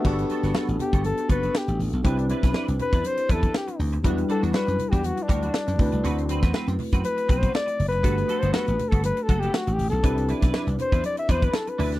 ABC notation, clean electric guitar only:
X:1
M:4/4
L:1/16
Q:"Swing 16ths" 1/4=120
K:G
V:1 name="Clean electric guitar"
[B,FA]2 [B,FA] [B,FA] [B,FA]2 z [B,FA] z2 [B,FA] [B,FA] z4 | [DEB]2 [DEB] [DEB] [DEB]2 z [DEB] z2 [DEB] [DEB] z4 | [G,DF]2 [G,DF] [G,DF] [G,DF]2 z [G,DF] z2 [G,DF] [G,DF] z4 | [CFB]2 [CFB] [CFB] [CFB]2 z [CFB] z2 [CFB] [CFB] z4 |
[B,FA]2 [B,FA] [B,FA] [B,FA]2 z [B,FA] z2 [B,FA] [B,FA] z4 | [DEB]2 [DEB] [DEB] [DEB]2 z [DEB] z2 [DEB] [DEB] z2 [DEB]2 |]